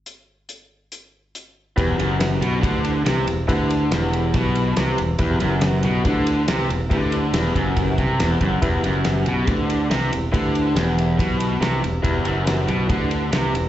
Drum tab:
RD |--------|xxxxxxxx|xxxxxxxx|xxxxxxxx|
HH |x-x-x-x-|--------|--------|--------|
SD |--------|--o---o-|--o---o-|--o---o-|
BD |--------|o---o---|o---o---|o---o---|

RD |xxxxxxxx|xxxxxxxx|xxxxxxxx|xxxxxxxx|
HH |--------|--------|--------|--------|
SD |--o---o-|--o---o-|--o---o-|--o---o-|
BD |o--ooo-o|o---o---|o---o---|o---o---|